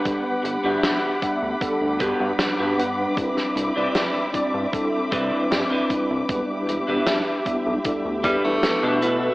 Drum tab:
HH |x-x-x-x-x-x-x-x-|x-x-x-x-x-x-x-x-|x-x-x-x-x-x-x-x-|
SD |----o-------o---|-o--o-------o---|----o-------o---|
BD |o-----o-o-o-----|o-----o-o-o---o-|o-----o-o-o-----|